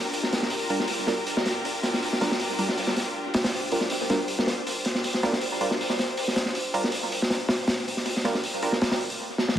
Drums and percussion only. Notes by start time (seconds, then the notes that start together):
0.13 open hi-hat
0.23 snare
0.32 snare, open hi-hat
0.42 snare
0.50 open hi-hat
0.70 open hi-hat
0.80 snare
0.88 open hi-hat
1.07 snare, open hi-hat
1.27 open hi-hat
1.37 snare
1.46 snare, open hi-hat
1.65 open hi-hat
1.83 snare, open hi-hat
1.94 snare
2.03 open hi-hat
2.13 snare
2.21 snare, open hi-hat
2.31 snare
2.40 open hi-hat
2.59 open hi-hat
2.69 snare
2.77 open hi-hat
2.87 snare
2.96 snare, open hi-hat
3.34 snare, open hi-hat
3.44 snare, open hi-hat
3.53 open hi-hat
3.72 open hi-hat
3.81 snare
3.90 open hi-hat
4.10 snare, open hi-hat
4.28 open hi-hat
4.39 snare
4.47 snare, open hi-hat
4.67 open hi-hat
4.85 snare, open hi-hat
4.95 snare
5.04 open hi-hat
5.14 snare
5.23 snare, open hi-hat
5.33 snare
5.41 open hi-hat
5.61 open hi-hat
5.71 snare
5.81 open hi-hat
5.90 snare
5.99 snare, open hi-hat
6.17 open hi-hat
6.28 snare
6.36 snare, open hi-hat
6.45 snare
6.55 open hi-hat
6.74 open hi-hat
6.84 snare
6.92 open hi-hat
7.12 open hi-hat
7.22 snare
7.30 snare, open hi-hat
7.49 snare, open hi-hat
7.68 snare, open hi-hat
7.88 open hi-hat
7.97 snare
8.06 open hi-hat
8.17 snare
8.24 snare, open hi-hat
8.35 snare
8.44 open hi-hat
8.62 open hi-hat
8.72 snare
8.81 snare, open hi-hat
8.91 snare, open hi-hat
9.01 open hi-hat
9.10 open hi-hat
9.38 snare
9.48 snare